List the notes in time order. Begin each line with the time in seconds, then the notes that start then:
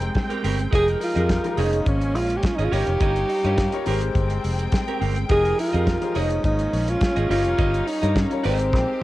Already playing: G#3 C4 D#4 G4 A#4 C5 G5
0.01 muted clean electric guitar stroke, closed hi-hat
0.14 muted clean electric guitar stroke, kick, snare, closed hi-hat
0.30 C4 G4 A#4, closed hi-hat
0.43 G1 C4 G4 A#4, open hi-hat
0.59 muted clean electric guitar stroke, closed hi-hat
0.71 F1 F3 G#3 D#4 G4 G#4 A#4 D#5, kick, closed hi-hat
0.75 G#4
0.88 closed hi-hat
1.00 F4, muted clean electric guitar stroke, open hi-hat
1.15 F2 F3 D#4 G4 G#4 A#4 D#5, closed hi-hat
1.29 kick, snare, closed hi-hat
1.44 F3 D#4 G4 G#4 A#4, muted clean electric guitar stroke, closed hi-hat
1.57 F1 F3 G#3 A#3 C#4 D#4 F4 G#4 C5 C#5 D#5, open hi-hat
1.72 muted clean electric guitar stroke, closed hi-hat
1.85 G#1 C#4, muted clean electric guitar stroke, kick, closed hi-hat
2.01 muted clean electric guitar stroke, closed hi-hat
2.15 A#1 F4, open hi-hat
2.30 muted clean electric guitar stroke, closed hi-hat
2.37 G4
2.43 F4, muted clean electric guitar stroke, kick, snare, closed hi-hat
2.56 G#1 D#4 C#5 D#5, closed hi-hat
2.60 G#4
2.65 F4
2.72 G1 G3 D#4 F4 G4 A#4 C#5 D#5, open hi-hat
2.87 F1, muted clean electric guitar stroke, closed hi-hat
3.00 G1 G4 C#5 D#5, kick, closed hi-hat
3.16 closed hi-hat
3.29 muted clean electric guitar stroke, open hi-hat
3.44 G2 G3 D#4 F4 G4 A#4 C#5 D#5, closed hi-hat
3.58 kick, snare, closed hi-hat
3.72 G3 D#4 F4 A#4 C#5, muted clean electric guitar stroke, closed hi-hat
3.86 G#1 G#3 C4 D#4 G4 A#4 C5 G5, open hi-hat
4.01 muted clean electric guitar stroke, closed hi-hat
4.15 G1, muted clean electric guitar stroke, kick, closed hi-hat
4.30 muted clean electric guitar stroke, closed hi-hat
4.44 F1, open hi-hat
4.59 muted clean electric guitar stroke, closed hi-hat
4.72 muted clean electric guitar stroke, kick, snare, closed hi-hat
4.88 C4 G4 A#4, closed hi-hat
5.01 G1 C4 G4 A#4, open hi-hat
5.16 muted clean electric guitar stroke, closed hi-hat
5.29 F1 F3 G#3 D#4 G4 G#4 A#4 D#5, kick, closed hi-hat
5.45 closed hi-hat
5.58 F4, muted clean electric guitar stroke, open hi-hat
5.73 F2 F3 D#4 G4 G#4 A#4 D#5, closed hi-hat
5.87 kick, snare, closed hi-hat
6.02 F3 D#4 G4 G#4 C5, muted clean electric guitar stroke, closed hi-hat
6.14 F1 F3 G#3 A#3 C#4 D#4 F4 G#4 C5 C#5 D#5, open hi-hat
6.30 muted clean electric guitar stroke, closed hi-hat
6.43 G#1 D#4, muted clean electric guitar stroke, kick, closed hi-hat
6.59 muted clean electric guitar stroke, closed hi-hat
6.73 A#1, open hi-hat
6.88 F4, muted clean electric guitar stroke, closed hi-hat
7.01 muted clean electric guitar stroke, kick, snare, closed hi-hat
7.16 G#1 G#4 C#5 D#5, closed hi-hat
7.29 G1 G3 D#4 F4 G4 A#4 C#5 D#5, open hi-hat
7.44 F1, muted clean electric guitar stroke, closed hi-hat
7.57 G1 G4 C#5 D#5, kick, closed hi-hat
7.74 closed hi-hat
7.87 D#4, muted clean electric guitar stroke, open hi-hat
8.02 G2 G3 D#4 F4 G4 A#4 C#5 D#5, closed hi-hat
8.16 C#4, kick, snare, closed hi-hat
8.31 G3 D#4 F4 A#4 C#5, muted clean electric guitar stroke, closed hi-hat
8.43 G#1 G#3 C4 D#4 G4 A#4 C5 D#5, open hi-hat
8.59 muted clean electric guitar stroke, closed hi-hat
8.72 A#1, muted clean electric guitar stroke, kick, snare
8.88 muted clean electric guitar stroke